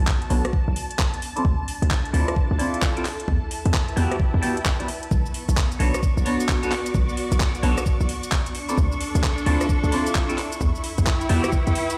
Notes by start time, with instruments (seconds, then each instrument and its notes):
Already playing: string section B3 F#4 D5, string machine A5
0.07 kick, clap
0.22 closed hi-hat
0.30 808-style bass B1, clean electric guitar B3 D4 F#4 A4 C#5, open hi-hat
0.45 cross-stick, closed hi-hat
0.53 kick
0.68 808-style bass B1
0.76 open hi-hat
0.91 closed hi-hat
0.99 kick, clap
1.14 closed hi-hat
1.22 string section D4, open hi-hat
1.36 clean electric guitar C4 E4 F4 A4 D5, closed hi-hat
1.45 808-style bass D2, kick
1.68 open hi-hat
1.82 808-style bass D2, closed hi-hat
1.87 string section A4
1.91 kick, clap
2.05 closed hi-hat
2.13 808-style bass D2, clean electric guitar C4 E4 F4 A4 D5, open hi-hat
2.28 cross-stick, closed hi-hat
2.36 kick
2.51 808-style bass D2
2.58 clean electric guitar C4 E4 F4 A4 D5, open hi-hat
2.74 closed hi-hat
2.82 kick, clap
2.96 clean electric guitar C4 E4 F4 A4 D5, closed hi-hat
3.05 string section E4, clap, open hi-hat
3.20 closed hi-hat
3.28 808-style bass E2, kick
3.51 open hi-hat
3.65 808-style bass E2, closed hi-hat
3.74 kick, cross-stick, clap
3.84 string section B4
3.88 closed hi-hat
3.96 808-style bass E2, clean electric guitar B3 E4 F#4 G4 D5, string section G5, open hi-hat
4.12 cross-stick, closed hi-hat
4.20 kick
4.34 808-style bass E2
4.42 clean electric guitar B3 E4 F#4 G4 D5, open hi-hat
4.57 closed hi-hat
4.65 kick, clap
4.79 clean electric guitar B3 E4 F#4 G4 D5, closed hi-hat
4.88 open hi-hat
5.03 closed hi-hat
5.11 808-style bass B1, string section B3, string machine C#6, kick, shaker
5.26 shaker
5.34 open hi-hat
5.49 808-style bass B1, string section D5, closed hi-hat, shaker
5.57 kick, clap, shaker
5.64 string section F#4
5.72 closed hi-hat, shaker
5.79 808-style bass B1, clean electric guitar B3 D4 F#4 A4 C#5, open hi-hat
5.94 cross-stick, closed hi-hat, shaker
6.03 kick, shaker
6.17 808-style bass B1, shaker
6.25 clean electric guitar B3 D4 F#4 A4 C#5, open hi-hat
6.40 closed hi-hat, shaker
6.49 kick, clap, shaker
6.63 clean electric guitar B3 D4 F#4 A4 C#5, closed hi-hat, shaker
6.72 clap, open hi-hat
6.86 closed hi-hat, shaker
6.94 808-style bass B1, kick, shaker
7.09 shaker
7.17 open hi-hat
7.32 808-style bass B1, closed hi-hat, shaker
7.40 kick, clap, shaker
7.55 closed hi-hat, shaker
7.63 808-style bass B1, clean electric guitar B3 D4 F#4 A4 C#5, open hi-hat
7.78 cross-stick, closed hi-hat, shaker
7.86 kick, shaker
8.01 808-style bass B1, shaker
8.09 open hi-hat
8.23 closed hi-hat, shaker
8.32 kick, clap, shaker
8.46 closed hi-hat, shaker
8.55 string section D4, open hi-hat
8.69 clean electric guitar C4 E4 F4 A4 D5, closed hi-hat, shaker
8.78 808-style bass D2, kick, shaker
8.89 string section A4, shaker
9.01 open hi-hat
9.15 808-style bass D2, closed hi-hat, shaker
9.23 kick, clap, shaker
9.38 closed hi-hat, shaker
9.46 808-style bass D2, clean electric guitar C4 E4 F4 A4 D5, open hi-hat
9.61 cross-stick, closed hi-hat, shaker
9.69 kick, shaker
9.84 808-style bass D2, shaker
9.92 clean electric guitar C4 E4 F4 A4 D5, open hi-hat
10.07 closed hi-hat, shaker
10.15 kick, clap, shaker
10.29 clean electric guitar C4 E4 F4 A4 D5, closed hi-hat, shaker
10.38 string section E4, clap, open hi-hat
10.52 closed hi-hat, shaker
10.61 808-style bass E2, kick, shaker
10.75 shaker
10.84 open hi-hat
10.98 808-style bass E2, kick, closed hi-hat, shaker
11.02 string section B4 G5
11.07 kick, cross-stick, clap, shaker
11.21 closed hi-hat, shaker
11.29 808-style bass E2, clean electric guitar B3 E4 F#4 G4 D5, open hi-hat
11.44 cross-stick, closed hi-hat, shaker
11.52 kick, shaker
11.67 808-style bass E2, closed hi-hat, shaker
11.75 open hi-hat
11.90 closed hi-hat, shaker